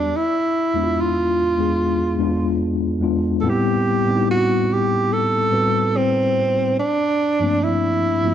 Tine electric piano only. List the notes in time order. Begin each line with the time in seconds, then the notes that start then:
Already playing: E2 G3 B3 D4 F#4 G4
0.74 E2 G#3 B3 D4 E4
0.84 F4
1.57 E2 G#3 B3 D4 G#4
2.18 E2 G#3 B3 D4 F4
3.00 E2 G#3 B3 D4 F4
3.43 A2 G3 B3 C4 E4
4.06 A2 G3 B3 C4 D#4
4.15 E4
5.50 A2 G3 C4 F#4 B4
7.40 G2 F3 A3 A#3 C4 D4
8.23 G2 F3 A3 A#3 C4 F4